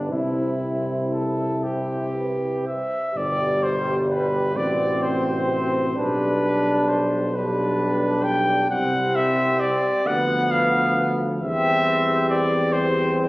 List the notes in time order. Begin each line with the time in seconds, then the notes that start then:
Already playing: G1 D4
0.09 C2 C4 E4 C5
1.12 A4
1.62 G4 C5
2.15 B4
2.64 C5 E5
3.11 G1 G4
3.15 B2 G3 D5
3.63 C5
4.10 B4
4.54 A1 C3 C4 F#4 D5
5.02 C5
5.95 B1 G3 D4 G4 B4
6.89 C5
7.33 G3 D4 G4 B4
8.24 G5
8.70 C2 G3 C4 G4 F#5
9.15 E5
9.60 D5
10.05 D2 F3 B3 B4 F#5
10.51 F5
11.39 E2 G3 C4 G4 E5
12.30 D5
12.73 G3 C4 G4 C5